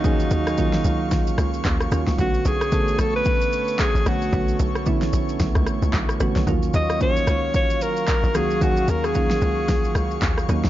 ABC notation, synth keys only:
X:1
M:4/4
L:1/8
Q:"Swing 16ths" 1/4=112
K:Ebm
V:1 name="Synth keys"
[E,G,B,DA]2 [E,G,B,DF]3 z2 [E,G,B,DF] | [=D,=A,=B,^C^F]2 [D,A,B,C=A]3 z2 [D,A,B,CF] | [=D,=A,=B,^C^F]2 [D,A,B,C_F]3 z2 [D,A,B,C^F] | [E,G,B,DF]2 [E,G,B,DF]3 z2 [E,G,B,DG] |
[E,G,B,DA]2 [E,G,B,DF]3 z2 [E,G,B,DE] |]